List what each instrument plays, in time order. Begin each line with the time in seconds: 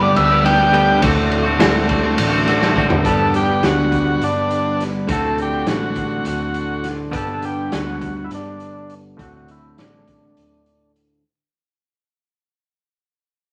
Already playing: picked electric bass G1, synth drone D2, clean electric guitar G2 D3, harmonium G4 D5 B5
0.00 clean electric guitar G3 B3 D4 G4, transistor combo organ D5
0.16 picked electric bass D2, transistor combo organ E5, ride
0.29 clean electric guitar G3 B3 D4 G4
0.43 clean electric guitar G3 B3 D4 G4, transistor combo organ G5, snare, ride
0.58 clean electric guitar G3 B3 D4 G4
0.71 clean electric guitar G2 D3 G3 B3 D4 G4, ride
1.01 picked electric bass D1, clean electric guitar D2 A2 D3 A3 C4 F#4, harmonium A4 C6, kick, ride
1.15 clean electric guitar D3 A3 C4 F#4
1.31 ride
1.43 clean electric guitar D3 A3 C4 F#4
1.58 picked electric bass D1, clean electric guitar D2 A2 D3 A3 C4 F#4, snare, ride
1.86 clean electric guitar D3 A3 C4 F#4, kick, ride
2.01 clean electric guitar D3 A3 C4 F#4
2.18 picked electric bass A1, ride
2.30 clean electric guitar D3 A3 C4 F#4
2.45 clean electric guitar D3 A3 C4 F#4, snare, ride
2.60 clean electric guitar D3 A3 C4 F#4, snare
2.75 clean electric guitar D2 A2 D3 A3 C4 F#4, kick
2.90 floor tom
3.04 picked electric bass G1, clean electric guitar G2 D3 G3 B3 D4 G4, harmonium G3 D5 F#5 B5, transistor combo organ A4, kick, closed hi-hat
3.34 transistor combo organ G4, snare, closed hi-hat
3.63 picked electric bass D2, transistor combo organ F#4, snare, closed hi-hat
3.92 kick, closed hi-hat
4.21 picked electric bass G1, transistor combo organ D4, closed hi-hat
4.51 closed hi-hat
4.80 snare, closed hi-hat
5.07 picked electric bass D1, clean electric guitar D2 A2 D3 A3 C4, harmonium A4 C6, kick, closed hi-hat
5.12 clean electric guitar F#4, transistor combo organ A4
5.38 transistor combo organ G4, closed hi-hat
5.66 picked electric bass A1, transistor combo organ F#4, snare, closed hi-hat
5.96 kick, closed hi-hat
6.25 picked electric bass D1, transistor combo organ F#4, closed hi-hat
6.54 closed hi-hat
6.84 snare, closed hi-hat
7.11 picked electric bass G1, clean electric guitar G2 D3 G3 B3 D4 G4, kick, closed hi-hat
7.16 transistor combo organ A4
7.42 transistor combo organ G4, closed hi-hat
7.72 picked electric bass D2, transistor combo organ F#4, snare, closed hi-hat
8.01 kick, closed hi-hat
8.24 transistor combo organ E4
8.31 picked electric bass G1, transistor combo organ D4, snare, closed hi-hat
8.60 closed hi-hat
8.90 closed hi-hat
9.17 picked electric bass D1, clean electric guitar D2 A2 D3 A3 C4 F#4, kick, closed hi-hat
9.22 transistor combo organ F#4
9.48 transistor combo organ E4, closed hi-hat
9.78 picked electric bass A1, transistor combo organ D4, snare, closed hi-hat
10.08 kick, closed hi-hat
10.37 picked electric bass D1, closed hi-hat
10.66 closed hi-hat
10.96 closed hi-hat